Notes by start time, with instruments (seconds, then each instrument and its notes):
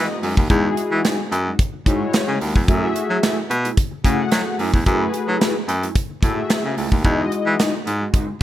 Already playing: analog polysynth G#3 E4 F#4 D#5
0.09 muted clean electric guitar stroke
0.22 baritone saxophone F#2, clean electric guitar G#3 D#4 F#4, open hi-hat
0.37 baritone saxophone D#2, muted clean electric guitar stroke, kick
0.49 baritone saxophone E2, analog polysynth G#3 E4 F#4 G#4, clean electric guitar G#3 D#4 F#4, kick, closed hi-hat
0.77 muted clean electric guitar stroke, closed hi-hat
0.91 baritone saxophone E3, clean electric guitar G#3 D#4 F#4
1.04 clean electric guitar G#3 D#4 G#4, snare, clap, closed hi-hat
1.19 muted clean electric guitar stroke
1.31 baritone saxophone F#2, muted clean electric guitar stroke, closed hi-hat
1.46 clean electric guitar G#3 D#4 F#4
1.59 kick, closed hi-hat
1.73 muted clean electric guitar stroke
1.86 baritone saxophone G#2, clean electric guitar G#3 D#4 F#4, analog polysynth G#3 E4 F#4 C#5, kick, closed hi-hat
2.01 muted clean electric guitar stroke
2.13 muted clean electric guitar stroke, snare, clap, closed hi-hat
2.28 baritone saxophone C#3, muted clean electric guitar stroke
2.40 baritone saxophone D#2, clean electric guitar G#3 D#4 F#4, open hi-hat
2.55 baritone saxophone E2, muted clean electric guitar stroke, kick
2.68 baritone saxophone F#2, clean electric guitar A3 E4 G#4, analog polysynth A3 F#4 G#4 E5, kick, closed hi-hat
2.95 muted clean electric guitar stroke, closed hi-hat
3.10 baritone saxophone F#3, clean electric guitar A3 E4 G#4
3.22 clean electric guitar A3 E4 A4, snare, clap, closed hi-hat
3.37 muted clean electric guitar stroke
3.50 baritone saxophone B2, muted clean electric guitar stroke, closed hi-hat
3.64 clean electric guitar A3 E4 G#4, closed hi-hat
3.77 muted clean electric guitar stroke, kick, closed hi-hat
3.91 muted clean electric guitar stroke
4.04 baritone saxophone C#3, clean electric guitar A3 E4 G#4, analog polysynth A3 F#4 G#4 F#5, kick, closed hi-hat
4.19 muted clean electric guitar stroke
4.32 baritone saxophone F#3, snare, clap, closed hi-hat
4.46 muted clean electric guitar stroke
4.59 baritone saxophone F#2, clean electric guitar A3 E4 G#4, open hi-hat
4.73 baritone saxophone E2, muted clean electric guitar stroke, kick
4.86 baritone saxophone F#2, clean electric guitar A3 E4 G#4, analog polysynth A3 F#4 G#4 B4, kick, closed hi-hat
5.13 muted clean electric guitar stroke, closed hi-hat
5.28 baritone saxophone F#3, clean electric guitar A3 E4 G#4
5.40 clean electric guitar A3 E4 A4, snare, clap, closed hi-hat
5.55 muted clean electric guitar stroke
5.68 baritone saxophone F#2, muted clean electric guitar stroke, closed hi-hat
5.82 clean electric guitar A3 E4 G#4, closed hi-hat
5.95 kick, closed hi-hat
6.10 muted clean electric guitar stroke
6.22 baritone saxophone A2, clean electric guitar A3 E4 G#4, analog polysynth A3 F#4 G#4 E5, kick, closed hi-hat
6.37 muted clean electric guitar stroke
6.50 snare, clap, closed hi-hat
6.64 baritone saxophone C#3, muted clean electric guitar stroke
6.77 baritone saxophone C#2, clean electric guitar A3 E4 G#4, open hi-hat
6.91 baritone saxophone D#2, muted clean electric guitar stroke, kick
7.04 baritone saxophone E2, clean electric guitar G#3 D#4 F#4, analog polysynth G#3 E4 F#4 D#5, kick, closed hi-hat
7.31 muted clean electric guitar stroke, closed hi-hat
7.46 baritone saxophone E3, clean electric guitar G#3 D#4 F#4
7.59 clean electric guitar G#3 D#4 G#4, snare, clap, closed hi-hat
7.73 muted clean electric guitar stroke
7.86 baritone saxophone G#2, muted clean electric guitar stroke, closed hi-hat
8.00 clean electric guitar G#3 D#4 F#4
8.13 clean electric guitar G#3 D#4 F#4, kick, closed hi-hat
8.27 muted clean electric guitar stroke